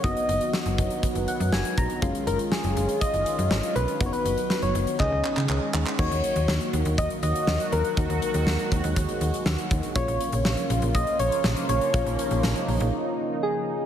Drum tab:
CC |----------------|----------------|----------------|x---------------|
HH |xxxx-xxxxxxx-xxx|xxxx-xxxxxxx-xxx|xxxx-xxx--------|-xxx-xxxxxxx-xxx|
CP |----------------|----------------|--------x-xxx-xx|----------------|
SD |----o-------o---|----o-------o---|----o-----------|----o-------o---|
BD |o-----o-o-----o-|o-------o-------|o-------o-------|o-------o-------|

CC |----------------|----------------|----------------|
HH |xxxx-xxxxxxx-xxx|xxxx-xxxxxxx-xxx|xxxx-xox--------|
CP |----------------|----------------|----------------|
SD |----o-------o---|----o-------o---|----o-----------|
BD |o-----o-o-----o-|o-------o-------|o---------------|